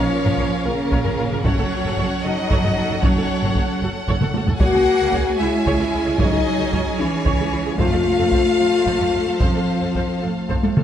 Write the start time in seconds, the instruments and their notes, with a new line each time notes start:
Already playing: cello section F3, french horn section C#4, string section C#4 A#4 C#5 F5, violin section C#5 F5
0.24 double bass section A#1, viola section A#4, taiko low-mid
0.38 double bass section A#1, viola section A#4 C#5, taiko
0.65 double bass section A#1, cello section C#3, french horn section A#3, viola section F4 A#4, violin section A#4
0.91 double bass section A#1, viola section A#4 C#5, taiko
1.05 double bass section A#1, viola section A#4, taiko low-mid
1.18 double bass section A#1, viola section F4 A#4
1.31 double bass section A#1, viola section A#4, taiko low-mid
1.44 double bass section F#1, cello section F#3, french horn section C#4, viola section A4 C#5, string section A4 F#5, violin section C#5 F#5, taiko
1.58 double bass section F#1, viola section A4
1.85 double bass section F#1, viola section A4, taiko low-mid
1.98 double bass section F#1, viola section A4 C#5, taiko
2.24 double bass section F#1, cello section F#3, french horn section D#4, viola section F#4 A4, violin section D#5
2.50 double bass section F#1, viola section A4 C#5, taiko
2.64 double bass section F#1, viola section A4, taiko low-mid
2.78 double bass section F#1, viola section F#4 A4
2.90 double bass section F#1, viola section A4, taiko low-mid
3.03 double bass section F#1, cello section F#3, french horn section C#4, viola section A4 C#5, violin section C#5, taiko
3.17 double bass section F#1, viola section A4
3.42 double bass section F#1, viola section A4, taiko low-mid
3.55 double bass section F#1, viola section A4 C#5, taiko
3.82 double bass section F#1, viola section F#4 A4
4.08 double bass section F#1, viola section A4 C#5, taiko
4.21 double bass section F#1, viola section A4, taiko mid
4.34 double bass section F#1, viola section F#4 A4, taiko high
4.47 double bass section F#1, viola section A4, taiko low
4.60 double bass section C#2, cello section A#3, string section C#4 G#4 C#5 G#5, french horn section F#4, viola section G#4 C#5, violin section F#5 G#5, taiko
4.74 double bass section C#2, viola section G#4
5.00 double bass section C#2, viola section G#4
5.13 double bass section C#2, viola section G#4 C#5, taiko
5.39 double bass section C#2, cello section G#3, french horn section E4, viola section E4 G#4, violin section E5
5.66 double bass section C#2, viola section G#4 C#5, taiko
5.79 double bass section C#2, viola section G#4
5.93 double bass section C#2, viola section E4 G#4
6.06 double bass section C#2, viola section G#4
6.19 double bass section C#2, cello section F#3, french horn section D#4, viola section G#4 C#5, violin section D#5, taiko
6.33 double bass section C#2, viola section G#4
6.59 double bass section C#2, viola section G#4
6.72 double bass section C#2, viola section G#4 C#5, taiko
6.98 double bass section C#2, cello section E3, french horn section C#4, viola section E4 G#4, violin section C#5
7.26 double bass section C#2, viola section G#4 C#5, taiko
7.39 double bass section C#2, viola section G#4
7.52 double bass section C#2, viola section E4 G#4
7.65 double bass section C#2, viola section G#4
7.78 timpani F2, double bass section F2, cello section A3, string section F4 A4 C5 F5, french horn section F4, viola section A4 C5, violin section F5, taiko
7.93 double bass section F2, viola section A4
8.19 double bass section F2, viola section A4
8.32 double bass section F2, viola section A4 C5, taiko
8.59 double bass section F2, viola section F4 A4
8.86 double bass section F2, viola section A4 C5, taiko
9.00 double bass section F2, viola section A4
9.14 double bass section F2, viola section F4 A4
9.27 double bass section F2, viola section A4
9.40 double bass section F2, cello section F3, french horn section C4, viola section A4 C5, violin section C5, taiko
9.55 double bass section F2, viola section A4
9.82 double bass section F2, viola section A4
9.95 double bass section F2, viola section A4 C5, taiko
10.22 double bass section F2, french horn section A3, viola section F4 A4
10.49 double bass section F2, viola section A4 C5, taiko
10.63 double bass section F2, viola section A4, taiko high
10.76 double bass section F2, viola section F4 A4, taiko mid